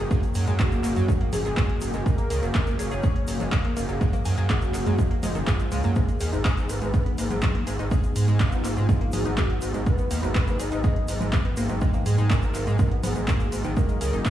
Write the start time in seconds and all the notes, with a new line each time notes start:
Already playing: G#2 D#3 A#3 F#4 G#4
0.11 F#2 G#4, kick, closed hi-hat, shaker
0.23 closed hi-hat, shaker
0.34 F#2, open hi-hat, shaker
0.47 F#2 G#3, closed hi-hat, shaker
0.59 F#1 F#4, kick, clap, closed hi-hat, shaker
0.72 F#1 A#3, closed hi-hat, shaker
0.84 F#1 A#3, clap, open hi-hat, shaker
0.96 F#2 F#3, closed hi-hat, shaker
1.08 F#1 G#3, kick, closed hi-hat, low conga, shaker
1.21 A#3, closed hi-hat
1.33 F#1 G#4, open hi-hat, low conga, shaker
1.45 F#1 G#4, closed hi-hat, shaker
1.57 F#2 G#4, kick, clap, closed hi-hat, shaker
1.69 closed hi-hat
1.81 F#1, open hi-hat, shaker
1.93 F#1 G#3, closed hi-hat, shaker
2.06 F#1 A#4 F5, kick, closed hi-hat, shaker
2.18 A#3, closed hi-hat, shaker
2.30 C#2 A#3, open hi-hat, shaker
2.42 F#1 F#3, closed hi-hat, shaker
2.55 F#1 G#3, kick, clap, closed hi-hat, shaker
2.67 F#1 A#3, closed hi-hat, shaker
2.79 F#1 G#4 C#5, open hi-hat, shaker
2.91 F#1 G#4, closed hi-hat, shaker
3.03 F#1 G#4, kick, closed hi-hat, shaker
3.16 closed hi-hat
3.27 F#1, open hi-hat, shaker
3.40 F#1 G#3, closed hi-hat, low conga, shaker
3.52 F#1, kick, clap, closed hi-hat, shaker
3.64 A#3, closed hi-hat
3.77 F#1 A#3, open hi-hat, shaker
3.89 F#1 F#3, closed hi-hat, shaker
4.01 F#2 G#3, kick, closed hi-hat, shaker
4.13 A#3, closed hi-hat, low conga, shaker
4.25 F#2 G#4, open hi-hat, shaker
4.37 F#2 G#4, closed hi-hat, shaker
4.50 F#1 F#4 G#4, kick, clap, closed hi-hat, shaker
4.62 F#1, closed hi-hat, shaker
4.74 F#1, clap, open hi-hat, shaker
4.86 F#2 G#3, closed hi-hat, shaker
4.98 F#1, kick, closed hi-hat, low conga, shaker
5.11 A#3, closed hi-hat
5.23 F#1 G#3 F4, open hi-hat, low conga, shaker
5.35 F#1 D#3, closed hi-hat, shaker
5.47 F#2 G#4, kick, clap, closed hi-hat, shaker
5.60 G#3, closed hi-hat, shaker
5.72 C#2 G#3, open hi-hat, shaker
5.83 F#2 A#3, closed hi-hat, shaker
5.95 G#1 G#2 D#3 G#3 B3 D#4 G#4, kick, closed hi-hat, shaker
6.08 A#3, closed hi-hat, shaker
6.20 D#2 G#4, open hi-hat, shaker
6.33 G#1 D#4, closed hi-hat, shaker
6.45 G#1 G#4, kick, clap, closed hi-hat, shaker
6.57 G#1, closed hi-hat, shaker
6.69 G#1 B4, open hi-hat, shaker
6.82 G#1 G#3, closed hi-hat, shaker
6.94 G#1, kick, closed hi-hat, shaker
7.06 B3, closed hi-hat
7.18 G#1 A#3, open hi-hat, shaker
7.30 G#1 F#3, closed hi-hat, low conga, shaker
7.42 G#1 G#3, kick, clap, closed hi-hat, shaker
7.55 A#3, closed hi-hat
7.67 G#1 G#4, open hi-hat, shaker
7.79 G#1 D#4, closed hi-hat, shaker
7.91 G#2 G#4, kick, closed hi-hat, shaker
8.04 closed hi-hat, shaker
8.16 G#2, open hi-hat, shaker
8.28 G#2 G#3, closed hi-hat, shaker
8.40 G#1 F4, kick, clap, closed hi-hat, shaker
8.52 G#1 B3, closed hi-hat, shaker
8.64 G#1 A#3, clap, open hi-hat, shaker
8.77 G#2 F#3, closed hi-hat, shaker
8.89 G#1 G#3, kick, closed hi-hat, low conga, shaker
9.01 A#3, closed hi-hat
9.12 G#1 F#4 G#4, open hi-hat, low conga, shaker
9.25 G#1 D#4, closed hi-hat, shaker
9.37 G#2 G#4, kick, clap, closed hi-hat, shaker
9.50 closed hi-hat
9.61 G#1, open hi-hat, shaker
9.74 G#1 G#3, closed hi-hat, shaker
9.86 G#1 F#3 B4, kick, closed hi-hat, shaker
9.98 B3, closed hi-hat, shaker
10.11 D#2 A#3, open hi-hat, shaker
10.23 G#1 F#3, closed hi-hat, shaker
10.35 G#1 G#3, kick, clap, closed hi-hat, shaker
10.47 G#1 A#3, closed hi-hat, shaker
10.59 G#1 G#4 D#5, open hi-hat, shaker
10.72 G#1 D#4, closed hi-hat, shaker
10.84 G#1 G#4, kick, closed hi-hat, shaker
10.96 closed hi-hat
11.08 G#1, open hi-hat, shaker
11.21 G#1 G#3, closed hi-hat, low conga, shaker
11.33 G#1, kick, clap, closed hi-hat, shaker
11.45 B3, closed hi-hat
11.57 G#1 A#3, open hi-hat, shaker
11.69 G#1 F#3, closed hi-hat, shaker
11.81 G#2 G#3, kick, closed hi-hat, shaker
11.93 A#3, closed hi-hat, low conga, shaker
12.06 G#2 G#4, open hi-hat, shaker
12.18 G#2 D#4, closed hi-hat, shaker
12.30 G#1 G#4 A#4, kick, clap, closed hi-hat, shaker
12.42 G#1, closed hi-hat, shaker
12.54 G#1, clap, open hi-hat, shaker
12.67 G#2 G#3, closed hi-hat, shaker
12.79 G#1, kick, closed hi-hat, low conga, shaker
12.91 B3, closed hi-hat
13.03 G#1 B3 G#4, open hi-hat, low conga, shaker
13.16 G#1, closed hi-hat, shaker
13.28 G#2 A#3, kick, clap, closed hi-hat, shaker
13.40 A#3, closed hi-hat, shaker
13.52 G#1, open hi-hat, shaker
13.64 G#1 D#3, closed hi-hat, shaker
13.76 F#1 G#3 A#3 G#4 A#4, kick, closed hi-hat, shaker
13.89 G#3, closed hi-hat, shaker
14.01 C#2 G#4, open hi-hat, shaker
14.13 F#1 D#4, closed hi-hat, shaker
14.25 F#1 G#4, kick, clap, closed hi-hat, shaker